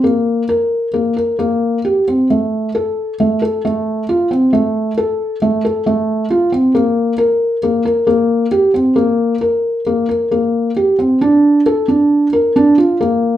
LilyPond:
\new Staff \with { instrumentName = "Felt piano" } { \time 5/4 \key bes \major \tempo 4 = 134 bes4 bes'4 bes8 bes'8 bes4 g'8 c'8 | a4 a'4 a8 a'8 a4 f'8 c'8 | a4 a'4 a8 a'8 a4 f'8 c'8 | bes4 bes'4 bes8 bes'8 bes4 g'8 c'8 |
bes4 bes'4 bes8 bes'8 bes4 g'8 c'8 | d'4 a'8 d'4 bes'8 d'8 f'8 bes4 | }